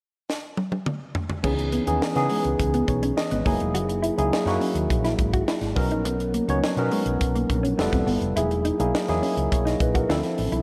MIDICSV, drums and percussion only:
0, 0, Header, 1, 2, 480
1, 0, Start_track
1, 0, Tempo, 576923
1, 1198, Time_signature, 4, 2, 24, 8
1, 8837, End_track
2, 0, Start_track
2, 0, Title_t, "Drums"
2, 247, Note_on_c, 9, 38, 58
2, 330, Note_off_c, 9, 38, 0
2, 478, Note_on_c, 9, 48, 69
2, 561, Note_off_c, 9, 48, 0
2, 599, Note_on_c, 9, 48, 69
2, 682, Note_off_c, 9, 48, 0
2, 719, Note_on_c, 9, 47, 85
2, 802, Note_off_c, 9, 47, 0
2, 956, Note_on_c, 9, 43, 89
2, 1039, Note_off_c, 9, 43, 0
2, 1078, Note_on_c, 9, 43, 88
2, 1161, Note_off_c, 9, 43, 0
2, 1196, Note_on_c, 9, 49, 82
2, 1197, Note_on_c, 9, 36, 105
2, 1279, Note_off_c, 9, 49, 0
2, 1281, Note_off_c, 9, 36, 0
2, 1320, Note_on_c, 9, 42, 44
2, 1403, Note_off_c, 9, 42, 0
2, 1434, Note_on_c, 9, 42, 72
2, 1517, Note_off_c, 9, 42, 0
2, 1557, Note_on_c, 9, 42, 50
2, 1640, Note_off_c, 9, 42, 0
2, 1683, Note_on_c, 9, 38, 103
2, 1766, Note_off_c, 9, 38, 0
2, 1793, Note_on_c, 9, 42, 48
2, 1800, Note_on_c, 9, 38, 33
2, 1876, Note_off_c, 9, 42, 0
2, 1883, Note_off_c, 9, 38, 0
2, 1910, Note_on_c, 9, 46, 72
2, 1993, Note_off_c, 9, 46, 0
2, 2034, Note_on_c, 9, 42, 53
2, 2117, Note_off_c, 9, 42, 0
2, 2159, Note_on_c, 9, 36, 86
2, 2159, Note_on_c, 9, 42, 93
2, 2242, Note_off_c, 9, 36, 0
2, 2242, Note_off_c, 9, 42, 0
2, 2279, Note_on_c, 9, 42, 53
2, 2362, Note_off_c, 9, 42, 0
2, 2397, Note_on_c, 9, 36, 93
2, 2397, Note_on_c, 9, 42, 62
2, 2480, Note_off_c, 9, 36, 0
2, 2480, Note_off_c, 9, 42, 0
2, 2519, Note_on_c, 9, 42, 58
2, 2603, Note_off_c, 9, 42, 0
2, 2642, Note_on_c, 9, 38, 97
2, 2725, Note_off_c, 9, 38, 0
2, 2756, Note_on_c, 9, 42, 52
2, 2839, Note_off_c, 9, 42, 0
2, 2876, Note_on_c, 9, 46, 66
2, 2878, Note_on_c, 9, 36, 99
2, 2959, Note_off_c, 9, 46, 0
2, 2961, Note_off_c, 9, 36, 0
2, 2997, Note_on_c, 9, 42, 45
2, 3081, Note_off_c, 9, 42, 0
2, 3118, Note_on_c, 9, 42, 97
2, 3201, Note_off_c, 9, 42, 0
2, 3240, Note_on_c, 9, 42, 49
2, 3324, Note_off_c, 9, 42, 0
2, 3358, Note_on_c, 9, 42, 66
2, 3442, Note_off_c, 9, 42, 0
2, 3482, Note_on_c, 9, 42, 52
2, 3565, Note_off_c, 9, 42, 0
2, 3605, Note_on_c, 9, 38, 102
2, 3688, Note_off_c, 9, 38, 0
2, 3720, Note_on_c, 9, 42, 44
2, 3728, Note_on_c, 9, 38, 31
2, 3803, Note_off_c, 9, 42, 0
2, 3811, Note_off_c, 9, 38, 0
2, 3838, Note_on_c, 9, 46, 77
2, 3921, Note_off_c, 9, 46, 0
2, 3955, Note_on_c, 9, 42, 58
2, 4038, Note_off_c, 9, 42, 0
2, 4079, Note_on_c, 9, 36, 90
2, 4080, Note_on_c, 9, 42, 93
2, 4163, Note_off_c, 9, 36, 0
2, 4163, Note_off_c, 9, 42, 0
2, 4198, Note_on_c, 9, 42, 52
2, 4202, Note_on_c, 9, 38, 31
2, 4281, Note_off_c, 9, 42, 0
2, 4285, Note_off_c, 9, 38, 0
2, 4315, Note_on_c, 9, 42, 64
2, 4316, Note_on_c, 9, 36, 93
2, 4398, Note_off_c, 9, 42, 0
2, 4399, Note_off_c, 9, 36, 0
2, 4439, Note_on_c, 9, 36, 101
2, 4439, Note_on_c, 9, 42, 58
2, 4522, Note_off_c, 9, 42, 0
2, 4523, Note_off_c, 9, 36, 0
2, 4560, Note_on_c, 9, 38, 106
2, 4643, Note_off_c, 9, 38, 0
2, 4670, Note_on_c, 9, 42, 48
2, 4679, Note_on_c, 9, 38, 33
2, 4753, Note_off_c, 9, 42, 0
2, 4762, Note_off_c, 9, 38, 0
2, 4794, Note_on_c, 9, 46, 73
2, 4796, Note_on_c, 9, 36, 102
2, 4877, Note_off_c, 9, 46, 0
2, 4879, Note_off_c, 9, 36, 0
2, 4916, Note_on_c, 9, 42, 48
2, 4999, Note_off_c, 9, 42, 0
2, 5037, Note_on_c, 9, 42, 94
2, 5120, Note_off_c, 9, 42, 0
2, 5159, Note_on_c, 9, 42, 48
2, 5243, Note_off_c, 9, 42, 0
2, 5275, Note_on_c, 9, 42, 65
2, 5359, Note_off_c, 9, 42, 0
2, 5398, Note_on_c, 9, 42, 48
2, 5481, Note_off_c, 9, 42, 0
2, 5521, Note_on_c, 9, 38, 110
2, 5605, Note_off_c, 9, 38, 0
2, 5633, Note_on_c, 9, 42, 44
2, 5717, Note_off_c, 9, 42, 0
2, 5753, Note_on_c, 9, 46, 72
2, 5836, Note_off_c, 9, 46, 0
2, 5873, Note_on_c, 9, 42, 52
2, 5956, Note_off_c, 9, 42, 0
2, 5997, Note_on_c, 9, 42, 89
2, 5999, Note_on_c, 9, 36, 90
2, 6080, Note_off_c, 9, 42, 0
2, 6082, Note_off_c, 9, 36, 0
2, 6120, Note_on_c, 9, 42, 48
2, 6203, Note_off_c, 9, 42, 0
2, 6238, Note_on_c, 9, 36, 89
2, 6240, Note_on_c, 9, 42, 67
2, 6321, Note_off_c, 9, 36, 0
2, 6323, Note_off_c, 9, 42, 0
2, 6362, Note_on_c, 9, 42, 57
2, 6446, Note_off_c, 9, 42, 0
2, 6481, Note_on_c, 9, 38, 106
2, 6565, Note_off_c, 9, 38, 0
2, 6595, Note_on_c, 9, 42, 53
2, 6596, Note_on_c, 9, 36, 85
2, 6678, Note_off_c, 9, 42, 0
2, 6679, Note_off_c, 9, 36, 0
2, 6718, Note_on_c, 9, 46, 76
2, 6802, Note_off_c, 9, 46, 0
2, 6838, Note_on_c, 9, 42, 44
2, 6922, Note_off_c, 9, 42, 0
2, 6962, Note_on_c, 9, 42, 96
2, 7045, Note_off_c, 9, 42, 0
2, 7081, Note_on_c, 9, 42, 44
2, 7164, Note_off_c, 9, 42, 0
2, 7197, Note_on_c, 9, 42, 71
2, 7280, Note_off_c, 9, 42, 0
2, 7320, Note_on_c, 9, 42, 50
2, 7403, Note_off_c, 9, 42, 0
2, 7445, Note_on_c, 9, 38, 103
2, 7528, Note_off_c, 9, 38, 0
2, 7557, Note_on_c, 9, 42, 42
2, 7565, Note_on_c, 9, 38, 33
2, 7641, Note_off_c, 9, 42, 0
2, 7648, Note_off_c, 9, 38, 0
2, 7679, Note_on_c, 9, 46, 75
2, 7762, Note_off_c, 9, 46, 0
2, 7800, Note_on_c, 9, 42, 54
2, 7884, Note_off_c, 9, 42, 0
2, 7921, Note_on_c, 9, 36, 96
2, 7924, Note_on_c, 9, 42, 89
2, 8004, Note_off_c, 9, 36, 0
2, 8008, Note_off_c, 9, 42, 0
2, 8044, Note_on_c, 9, 42, 48
2, 8047, Note_on_c, 9, 38, 33
2, 8127, Note_off_c, 9, 42, 0
2, 8130, Note_off_c, 9, 38, 0
2, 8157, Note_on_c, 9, 36, 92
2, 8157, Note_on_c, 9, 42, 62
2, 8240, Note_off_c, 9, 36, 0
2, 8240, Note_off_c, 9, 42, 0
2, 8280, Note_on_c, 9, 36, 101
2, 8280, Note_on_c, 9, 42, 61
2, 8363, Note_off_c, 9, 36, 0
2, 8363, Note_off_c, 9, 42, 0
2, 8402, Note_on_c, 9, 38, 97
2, 8485, Note_off_c, 9, 38, 0
2, 8513, Note_on_c, 9, 42, 49
2, 8522, Note_on_c, 9, 38, 32
2, 8597, Note_off_c, 9, 42, 0
2, 8605, Note_off_c, 9, 38, 0
2, 8635, Note_on_c, 9, 46, 67
2, 8718, Note_off_c, 9, 46, 0
2, 8755, Note_on_c, 9, 42, 45
2, 8837, Note_off_c, 9, 42, 0
2, 8837, End_track
0, 0, End_of_file